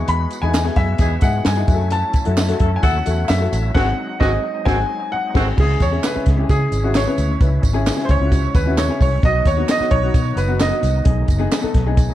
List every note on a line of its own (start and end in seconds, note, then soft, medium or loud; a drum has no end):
0.00 1.67 E3 medium
0.00 1.66 G#3 medium
0.00 1.64 B3 medium
0.00 0.31 D#4 medium
0.00 0.31 E4 medium
0.00 1.65 F#4 medium
0.00 0.31 G#4 medium
0.08 0.25 E2 loud
0.08 0.44 B5 loud
0.08 closed hi-hat medium
0.30 closed hi-hat medium
0.30 tambourine medium
0.42 0.68 E2 medium
0.42 0.61 D#4 medium
0.42 0.61 E4 medium
0.42 0.62 G#4 medium
0.42 0.78 G#5 medium
0.53 snare medium
0.53 clap loud
0.53 closed hi-hat medium
0.53 tambourine medium
0.65 1.11 B3 medium
0.65 1.11 E4 medium
0.65 1.11 G#4 medium
0.65 snare soft
0.76 0.94 F#2 medium
0.76 0.87 E3 medium
0.76 0.87 D#4 medium
0.76 0.87 G#4 medium
0.76 1.24 E5 loud
0.76 kick medium
0.76 snare soft
0.76 closed hi-hat medium
0.98 1.16 E2 medium
0.98 1.15 E3 medium
0.98 1.15 D#4 medium
0.98 1.15 G#4 loud
0.98 kick loud
0.98 closed hi-hat medium
0.98 tambourine medium
1.21 1.39 G#2 medium
1.21 1.50 D#4 medium
1.21 1.50 E4 medium
1.21 1.50 G#4 medium
1.21 1.46 F#5 medium
1.21 kick loud
1.21 closed hi-hat medium
1.21 tambourine medium
1.45 1.63 G2 loud
1.45 1.93 G#5 medium
1.45 snare loud
1.45 clap medium
1.45 closed hi-hat medium
1.45 tambourine medium
1.57 1.68 D#4 medium
1.57 1.66 E4 medium
1.57 1.67 G#4 medium
1.67 2.02 F#2 medium
1.67 5.53 F#3 medium
1.67 3.72 A3 medium
1.67 3.72 C#4 medium
1.67 2.14 E4 medium
1.67 3.72 E4 medium
1.67 2.14 F#4 medium
1.67 1.74 G#4 medium
1.67 kick loud
1.67 closed hi-hat medium
1.67 tambourine medium
1.74 2.17 A4 medium
1.90 2.79 A5 loud
1.90 closed hi-hat medium
1.90 tambourine soft
2.13 kick medium
2.13 closed hi-hat medium
2.13 tambourine medium
2.25 2.52 F#2 medium
2.25 2.44 E4 medium
2.25 2.44 F#4 medium
2.25 2.44 A4 medium
2.25 closed hi-hat medium
2.37 snare medium
2.37 clap medium
2.37 closed hi-hat medium
2.37 tambourine loud
2.47 2.93 E4 medium
2.47 2.94 F#4 medium
2.47 2.94 A4 loud
2.47 snare soft
2.47 closed hi-hat medium
2.60 2.77 F#2 medium
2.60 2.70 F#3 medium
2.60 2.71 E4 medium
2.60 2.70 A4 medium
2.60 kick medium
2.60 closed hi-hat medium
2.76 2.83 G#5 medium
2.83 3.00 D#2 loud
2.83 2.98 F#3 medium
2.83 2.98 E4 loud
2.83 2.98 A4 loud
2.83 3.30 F#5 loud
2.83 kick medium
2.83 closed hi-hat medium
2.83 tambourine medium
3.05 3.23 E2 medium
3.05 3.33 E4 medium
3.05 3.33 F#4 medium
3.05 3.33 A4 medium
3.05 closed hi-hat medium
3.05 tambourine medium
3.28 3.46 F#2 loud
3.28 3.71 E5 medium
3.28 snare loud
3.28 clap medium
3.28 closed hi-hat medium
3.28 tambourine medium
3.40 3.67 E4 medium
3.40 3.68 F#4 medium
3.40 3.68 A4 medium
3.53 3.69 A1 loud
3.53 closed hi-hat medium
3.53 tambourine medium
3.74 3.91 G#1 loud
3.74 3.87 D#3 medium
3.74 5.56 G#3 medium
3.74 3.90 C4 medium
3.74 5.56 C4 medium
3.74 3.87 C4 loud
3.74 5.56 D#4 medium
3.74 3.90 F#4 medium
3.74 3.87 F#4 medium
3.74 3.91 G#4 medium
3.74 4.17 F#5 loud
3.74 kick loud
3.74 snare loud
3.74 crash medium
4.20 4.36 G#1 loud
4.20 4.32 D#3 loud
4.20 4.32 C4 loud
4.20 4.36 C4 medium
4.20 4.32 F#4 loud
4.20 4.36 F#4 loud
4.20 4.36 G#4 medium
4.20 4.67 D#5 medium
4.20 kick medium
4.20 snare medium
4.65 4.82 G#1 loud
4.65 4.78 D#3 loud
4.65 4.81 C4 loud
4.65 4.78 C4 loud
4.65 4.82 F#4 loud
4.65 4.78 F#4 medium
4.65 4.82 G#4 loud
4.65 5.08 G#5 loud
4.65 kick medium
4.65 snare loud
5.12 5.44 F#5 medium
5.34 5.50 G#1 loud
5.34 5.47 D#3 loud
5.34 5.50 C4 loud
5.34 5.47 C4 loud
5.34 5.50 F#4 loud
5.34 5.47 F#4 loud
5.34 5.50 G#4 loud
5.34 kick loud
5.34 snare loud
5.34 crash medium
5.56 5.75 C#2 loud
5.56 9.20 C#3 medium
5.56 9.20 G#3 medium
5.56 5.84 C#4 medium
5.56 9.20 C#4 medium
5.56 5.84 E4 medium
5.56 9.20 E4 medium
5.56 5.84 G#4 medium
5.56 5.82 G#4 medium
5.56 kick loud
5.56 crash loud
5.80 5.97 E2 medium
5.80 6.05 C#5 loud
5.80 kick medium
5.80 closed hi-hat medium
5.80 tambourine medium
5.92 6.10 C#4 medium
5.92 6.10 E4 medium
5.92 6.10 G#4 medium
6.03 6.25 B4 medium
6.03 snare medium
6.03 clap loud
6.03 closed hi-hat medium
6.03 tambourine medium
6.14 6.32 C#4 medium
6.14 6.32 E4 medium
6.14 6.33 G#4 medium
6.14 muted fingered electric bass stroke soft
6.26 6.43 C#2 medium
6.26 kick medium
6.26 snare soft
6.26 closed hi-hat medium
6.36 6.73 C#4 medium
6.36 6.74 E4 medium
6.36 6.43 G4 medium
6.43 6.77 G#4 medium
6.49 6.66 C#3 loud
6.49 6.97 G#4 medium
6.49 kick medium
6.49 closed hi-hat medium
6.49 tambourine medium
6.72 7.05 G#1 medium
6.72 closed hi-hat medium
6.72 tambourine medium
6.83 7.01 C#4 medium
6.83 7.02 E4 medium
6.83 7.02 F#4 medium
6.95 7.38 C#5 medium
6.95 snare loud
6.95 clap medium
6.95 closed hi-hat medium
6.95 tambourine medium
7.06 7.33 C#4 medium
7.06 7.34 E4 medium
7.06 7.34 B4 medium
7.18 7.35 D2 loud
7.18 closed hi-hat medium
7.18 tambourine medium
7.40 7.58 C#2 loud
7.40 7.67 C#4 medium
7.40 7.68 E4 medium
7.40 7.68 B4 medium
7.40 kick loud
7.40 closed hi-hat medium
7.40 tambourine soft
7.63 7.89 G#1 medium
7.63 kick medium
7.63 closed hi-hat medium
7.63 tambourine medium
7.73 7.92 C#4 medium
7.73 7.92 E4 medium
7.73 7.92 G#4 loud
7.86 snare medium
7.86 clap medium
7.86 closed hi-hat medium
7.86 tambourine medium
7.96 8.15 C#4 medium
7.96 8.15 E4 medium
7.96 8.15 G#4 medium
7.96 snare soft
8.05 8.10 C5 medium
8.05 closed hi-hat medium
8.09 8.18 C#2 medium
8.09 8.57 C#5 loud
8.09 kick medium
8.09 tambourine soft
8.20 8.45 C#2 medium
8.20 8.56 C#4 medium
8.20 8.57 E4 medium
8.20 8.26 F4 medium
8.26 8.60 F#4 medium
8.32 kick medium
8.32 closed hi-hat medium
8.32 tambourine soft
8.55 8.88 D#2 medium
8.55 8.79 B4 medium
8.55 kick loud
8.55 closed hi-hat medium
8.55 tambourine medium
8.66 8.84 C#4 medium
8.66 8.84 E4 medium
8.66 8.85 F#4 medium
8.78 9.01 C#5 medium
8.78 snare loud
8.78 clap medium
8.78 closed hi-hat medium
8.78 tambourine medium
8.88 9.16 C#4 medium
8.88 9.16 E4 medium
8.88 9.16 G#4 medium
9.01 9.18 C2 medium
9.01 9.25 C#5 medium
9.01 kick medium
9.01 open hi-hat medium
9.01 tambourine medium
9.22 9.40 B1 loud
9.22 12.14 D#3 medium
9.22 12.14 F#3 medium
9.22 9.50 B3 medium
9.22 11.05 B3 medium
9.22 9.50 D#4 medium
9.22 12.14 D#4 medium
9.22 9.50 F#4 medium
9.22 9.46 D#5 loud
9.22 kick loud
9.22 closed hi-hat medium
9.22 tambourine soft
9.45 9.63 D#2 medium
9.45 9.70 C#5 loud
9.45 kick medium
9.45 closed hi-hat medium
9.45 tambourine medium
9.57 9.75 B3 medium
9.57 9.76 D#4 medium
9.57 9.75 F#4 medium
9.68 9.94 D#5 loud
9.68 snare medium
9.68 clap medium
9.68 closed hi-hat medium
9.68 tambourine medium
9.79 9.98 B3 medium
9.79 9.98 D#4 medium
9.79 9.98 F#4 medium
9.79 muted fingered electric bass stroke soft
9.79 snare soft
9.91 10.09 B1 medium
9.91 10.39 C#5 loud
9.91 kick medium
9.91 closed hi-hat medium
10.02 10.39 B3 medium
10.02 10.39 D#4 medium
10.02 10.39 F#4 medium
10.14 10.31 B2 loud
10.14 kick loud
10.14 closed hi-hat loud
10.14 tambourine soft
10.36 10.70 F#1 medium
10.36 10.61 B4 medium
10.36 closed hi-hat medium
10.36 tambourine medium
10.48 10.67 B3 medium
10.48 10.67 D#4 medium
10.48 10.67 F#4 medium
10.60 11.25 D#5 medium
10.60 snare loud
10.60 clap medium
10.60 closed hi-hat medium
10.60 tambourine medium
10.70 10.98 B3 medium
10.70 10.98 D#4 medium
10.70 10.98 F#4 medium
10.83 11.00 C2 medium
10.83 closed hi-hat medium
10.83 tambourine medium
11.05 11.23 B1 loud
11.05 12.14 A3 medium
11.05 11.33 B3 medium
11.05 11.33 D#4 medium
11.05 11.33 G#4 medium
11.05 kick loud
11.05 closed hi-hat medium
11.28 11.46 F#1 medium
11.28 kick medium
11.28 closed hi-hat medium
11.28 tambourine medium
11.38 11.58 B3 medium
11.38 11.58 D#4 medium
11.38 11.58 G#4 loud
11.51 snare medium
11.51 clap medium
11.51 closed hi-hat medium
11.51 tambourine medium
11.61 11.81 B3 medium
11.61 11.81 D#4 medium
11.61 11.81 A4 loud
11.61 muted fingered electric bass stroke soft
11.74 12.08 B1 medium
11.74 kick medium
11.74 snare soft
11.74 closed hi-hat medium
11.86 12.14 B3 medium
11.86 12.14 D#4 medium
11.86 12.14 G#4 medium
11.97 kick medium
11.97 closed hi-hat medium
11.97 tambourine medium